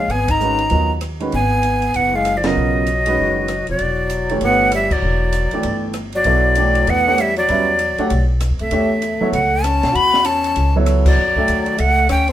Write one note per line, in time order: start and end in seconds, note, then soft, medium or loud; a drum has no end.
0.00 0.12 G#3 medium
0.00 0.13 F5 medium
0.08 0.67 G#1 medium
0.08 0.31 B3 medium
0.08 0.33 G#5 medium
0.08 ride medium
0.28 0.91 D#4 medium
0.28 0.91 A#5 medium
0.28 kick medium
0.28 ride medium
0.40 0.57 D#3 medium
0.40 0.58 G#3 soft
0.40 0.58 C#4 medium
0.40 0.58 F#4 soft
0.40 0.58 B4 medium
0.40 hi-hat pedal soft
0.59 ride soft
0.70 1.30 D#2 medium
0.70 0.88 F#3 medium
0.70 0.88 B3 medium
0.70 0.88 F4 soft
0.70 0.88 A#4 soft
0.70 0.89 D#5 medium
0.70 ride soft
1.01 cross-stick medium
1.01 hi-hat pedal soft
1.01 ride medium
1.20 1.31 D#3 medium
1.20 1.31 G#3 medium
1.20 1.31 C#4 medium
1.20 1.32 F#4 medium
1.20 1.32 B4 medium
1.20 ride soft
1.32 1.92 G#1 medium
1.32 1.95 B3 medium
1.32 1.98 G#5 medium
1.32 ride soft
1.63 hi-hat pedal soft
1.63 ride medium
1.82 ride soft
1.94 2.54 F#1 medium
1.94 2.16 B3 medium
1.94 2.17 F#5 medium
1.94 ride medium
2.14 2.38 G#3 medium
2.14 2.39 F5 medium
2.25 cross-stick soft
2.25 hi-hat pedal soft
2.25 ride medium
2.37 2.47 F3 soft
2.37 2.48 D5 medium
2.44 2.85 C#3 medium
2.44 2.85 F#3 medium
2.44 3.68 F#3 medium
2.44 2.85 B3 medium
2.44 2.85 F4 medium
2.44 2.85 A#4 medium
2.44 3.69 D#5 medium
2.44 snare medium
2.44 ride medium
2.57 3.15 B1 medium
2.87 hi-hat pedal soft
2.87 ride medium
3.06 3.46 D#3 medium
3.06 3.47 G#3 medium
3.06 3.47 C#4 medium
3.06 3.47 F#4 medium
3.06 3.47 B4 medium
3.06 ride medium
3.19 3.65 F#1 medium
3.48 cross-stick medium
3.48 hi-hat pedal soft
3.48 ride medium
3.67 3.79 F1 medium
3.67 4.38 F#3 medium
3.67 4.38 D5 medium
3.67 ride soft
3.79 4.39 E1 medium
3.79 ride medium
4.10 hi-hat pedal medium
4.10 ride medium
4.29 4.70 E3 medium
4.29 4.70 A3 medium
4.29 4.70 D4 medium
4.29 4.70 G4 medium
4.29 4.71 C#5 medium
4.29 ride soft
4.41 5.00 G1 medium
4.41 4.71 B3 medium
4.41 4.71 F#5 medium
4.41 ride medium
4.72 4.93 G3 medium
4.72 4.94 E5 medium
4.72 cross-stick medium
4.72 hi-hat pedal medium
4.72 ride medium
4.91 5.84 F#3 medium
4.91 5.84 D5 medium
4.91 kick medium
4.91 crash medium
5.02 5.49 E1 medium
5.33 hi-hat pedal medium
5.33 ride medium
5.51 5.93 E3 medium
5.51 5.93 A3 medium
5.51 5.93 D4 medium
5.51 5.94 D5 medium
5.51 5.94 G5 medium
5.51 muted upright bass stroke soft
5.51 ride soft
5.63 6.23 G1 medium
5.63 ride medium
5.93 cross-stick medium
5.93 hi-hat pedal medium
5.93 ride medium
6.12 6.90 F#3 medium
6.12 6.91 D5 medium
6.12 ride soft
6.24 6.84 B1 medium
6.24 6.55 F#3 medium
6.24 6.56 B3 medium
6.24 6.56 E4 medium
6.24 6.56 A4 medium
6.24 6.56 D5 medium
6.24 ride medium
6.55 7.03 E3 medium
6.55 7.03 A3 medium
6.55 7.03 D4 medium
6.55 7.03 D5 medium
6.55 7.03 G5 medium
6.55 hi-hat pedal soft
6.55 ride medium
6.75 ride soft
6.87 7.46 E2 medium
6.87 7.21 B3 medium
6.87 7.22 F#5 loud
6.87 ride medium
7.07 7.17 A3 medium
7.07 7.17 D4 medium
7.07 7.18 G4 medium
7.07 7.18 C#5 medium
7.07 7.18 F#5 medium
7.18 7.36 G3 medium
7.18 7.38 E5 medium
7.18 cross-stick medium
7.18 hi-hat pedal medium
7.18 ride medium
7.36 8.25 F#3 medium
7.36 8.26 D5 medium
7.36 ride soft
7.48 7.95 E2 medium
7.48 7.66 G3 medium
7.48 7.66 C#4 medium
7.48 7.66 F#4 medium
7.48 7.66 B4 medium
7.48 7.67 E5 medium
7.48 ride medium
7.79 hi-hat pedal medium
7.79 ride medium
7.98 8.09 A3 medium
7.98 8.10 D4 medium
7.98 8.10 G4 medium
7.98 8.10 C#5 medium
7.98 8.10 F#5 medium
7.98 muted upright bass stroke soft
7.98 ride soft
8.10 8.49 B1 medium
8.10 ride medium
8.40 cross-stick medium
8.40 hi-hat pedal medium
8.40 ride medium
8.50 8.60 E2 medium
8.59 8.71 F2 medium
8.59 9.30 A3 medium
8.59 9.30 E5 medium
8.59 ride soft
8.71 9.18 E2 medium
8.71 8.89 A3 medium
8.71 8.89 D4 medium
8.71 8.89 G4 medium
8.71 8.89 C#5 medium
8.71 8.90 E5 medium
8.71 ride medium
9.02 hi-hat pedal soft
9.02 ride medium
9.21 9.32 F#3 medium
9.21 9.32 B3 medium
9.21 9.32 E4 medium
9.21 9.32 A4 medium
9.21 9.33 C#5 medium
9.21 muted upright bass stroke soft
9.32 9.79 C#2 medium
9.32 9.65 A3 medium
9.32 9.65 F#5 medium
9.32 ride medium
9.64 9.94 C#4 medium
9.64 9.97 A5 medium
9.64 cross-stick medium
9.64 hi-hat pedal medium
9.64 ride medium
9.83 9.94 B2 medium
9.83 snare medium
9.83 ride soft
9.93 10.53 E2 medium
9.93 10.27 F#4 medium
9.93 10.27 B5 loud
9.93 ride medium
10.14 snare soft
10.24 10.75 C#4 medium
10.24 10.75 A5 medium
10.24 hi-hat pedal medium
10.24 ride medium
10.44 ride soft
10.56 11.15 C#2 medium
10.56 ride medium
10.76 11.16 F#3 medium
10.76 11.16 B3 medium
10.76 11.16 E4 medium
10.76 11.16 A4 medium
10.76 11.16 C#5 medium
10.86 cross-stick medium
10.86 hi-hat pedal soft
10.86 ride medium
11.05 11.79 F#3 medium
11.05 11.81 D5 medium
11.05 kick medium
11.05 crash medium
11.17 11.46 F#2 medium
11.36 11.77 A3 medium
11.36 11.77 D4 medium
11.36 11.77 A4 medium
11.36 11.78 E5 medium
11.36 11.77 G5 soft
11.36 kick medium
11.48 11.77 D#2 medium
11.48 hi-hat pedal medium
11.48 ride medium
11.66 ride soft
11.78 12.08 C#2 medium
11.78 12.08 A3 medium
11.78 12.10 F#5 medium
11.78 ride medium
12.09 12.32 D2 medium
12.09 12.27 C#4 medium
12.09 12.28 G5 medium
12.09 cross-stick medium
12.09 hi-hat pedal soft
12.09 ride medium
12.28 12.32 C4 medium
12.28 ride soft